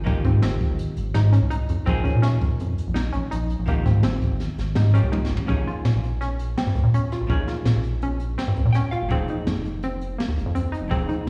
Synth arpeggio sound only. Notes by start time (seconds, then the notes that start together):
0.06 A#3
0.25 C4
0.42 C4
1.14 D#4
1.33 C#4
1.50 D#4
1.86 C4
2.04 C#4
2.22 C#4
2.94 D#4
3.13 C#4
3.31 D#4
3.68 A#3
3.86 C4
4.04 C4
4.77 D#4
4.94 C#4
5.12 D#4
5.48 C#4
5.67 F4
6.21 C#4
6.57 C4
6.94 C#4
7.12 F4
7.30 C#4
7.48 F4
8.03 C#4
8.38 C4
8.75 C#4
8.92 F4
9.11 C4
9.30 D#4
9.84 C4
10.18 A#3
10.55 C4
10.72 D#4
10.91 C4
11.09 D#4